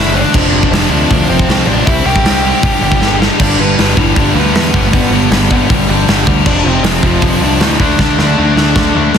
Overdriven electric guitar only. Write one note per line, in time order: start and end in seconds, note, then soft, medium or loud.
0.00 0.13 D3 medium
0.00 0.14 A3 medium
0.00 0.15 D4 medium
0.14 0.32 D3 medium
0.14 0.33 A3 medium
0.14 0.33 D4 loud
0.33 0.50 F2 loud
0.33 0.51 C3 loud
0.33 0.51 F3 loud
0.51 0.70 F2 medium
0.51 0.71 C3 loud
0.51 0.71 F3 loud
0.71 0.88 F2 medium
0.71 0.88 C3 medium
0.71 0.89 F3 loud
0.89 1.08 F2 medium
0.89 1.08 C3 medium
0.89 1.09 F3 loud
1.09 1.27 F2 loud
1.09 1.28 C3 loud
1.09 1.28 F3 loud
1.28 1.46 F2 medium
1.28 1.47 C3 loud
1.28 1.47 F3 loud
1.47 1.65 F2 loud
1.47 1.66 C3 loud
1.47 1.67 F3 loud
1.67 1.85 F2 medium
1.67 1.84 C3 loud
1.67 1.86 F3 loud
1.86 2.04 C3 medium
1.86 2.04 G3 loud
1.86 2.05 C4 loud
2.05 2.23 C3 medium
2.05 2.23 G3 loud
2.05 2.24 C4 loud
2.24 2.42 C3 medium
2.24 2.43 G3 medium
2.24 2.43 C4 medium
2.43 2.62 C3 medium
2.43 2.62 G3 loud
2.43 2.62 C4 medium
2.62 2.80 G2 medium
2.62 2.81 D3 loud
2.62 2.82 G3 loud
2.82 3.00 G2 medium
2.82 3.00 D3 medium
2.82 3.00 G3 loud
3.01 3.19 G2 medium
3.01 3.19 D3 medium
3.01 3.20 G3 loud
3.20 3.38 G2 medium
3.20 3.38 D3 loud
3.20 3.39 G3 loud
3.39 3.57 G2 medium
3.39 3.57 D3 medium
3.39 3.58 G3 loud
3.57 3.77 G2 medium
3.57 3.77 D3 medium
3.57 3.78 G3 medium
3.77 3.95 G2 medium
3.77 3.95 D3 medium
3.77 3.97 G3 loud
3.96 4.13 G2 loud
3.96 4.14 D3 loud
3.96 4.15 G3 loud
4.15 4.33 G2 medium
4.15 4.34 D3 medium
4.15 4.34 G3 loud
4.34 4.53 G2 medium
4.34 4.54 D3 medium
4.34 4.55 G3 loud
4.54 4.72 G2 loud
4.54 4.72 D3 loud
4.54 4.73 G3 loud
4.73 4.91 G2 medium
4.73 4.92 D3 medium
4.73 4.93 G3 medium
4.93 5.11 G2 loud
4.93 5.12 D3 loud
4.93 5.12 G3 loud
5.12 5.30 G2 medium
5.12 5.30 D3 medium
5.12 5.30 G3 loud
5.31 5.48 G2 medium
5.31 5.49 D3 loud
5.31 5.50 G3 loud
5.50 5.68 G2 medium
5.50 5.69 D3 loud
5.50 5.69 G3 loud
5.69 5.86 G2 medium
5.69 5.87 D3 medium
5.69 5.88 G3 medium
5.88 6.06 G2 medium
5.88 6.07 D3 medium
5.88 6.08 G3 loud
6.08 6.25 G2 loud
6.08 6.26 D3 loud
6.08 6.27 G3 loud
6.27 6.45 G2 medium
6.27 6.45 D3 medium
6.27 6.45 G3 loud
6.46 6.64 F2 loud
6.46 6.65 C3 medium
6.46 6.65 F3 loud
6.65 6.83 F2 loud
6.65 6.84 C3 loud
6.65 6.85 F3 loud
6.84 7.02 F2 medium
6.84 7.03 C3 loud
6.84 7.04 F3 medium
7.03 7.20 F2 medium
7.03 7.21 C3 loud
7.03 7.21 F3 loud
7.22 7.40 F2 medium
7.22 7.40 C3 medium
7.22 7.41 F3 medium
7.41 7.59 F2 medium
7.41 7.59 C3 loud
7.41 7.60 F3 medium
7.60 7.78 F2 loud
7.60 7.79 C3 loud
7.60 7.79 F3 loud
7.79 7.97 D3 loud
7.79 7.98 A3 loud
7.79 7.99 D4 loud
7.98 8.17 D3 medium
7.98 8.18 A3 loud
7.98 8.18 D4 loud
8.18 8.35 D3 medium
8.18 8.36 A3 loud
8.18 8.36 D4 loud
8.36 8.54 D3 medium
8.36 8.55 A3 medium
8.36 8.56 D4 medium
8.55 8.74 D3 loud
8.55 8.75 A3 loud
8.55 8.76 D4 loud
8.75 8.93 D3 medium
8.75 8.94 A3 medium
8.75 8.95 D4 medium
8.95 9.13 D3 medium
8.95 9.14 A3 medium
8.95 9.15 D4 medium
9.14 9.18 D3 medium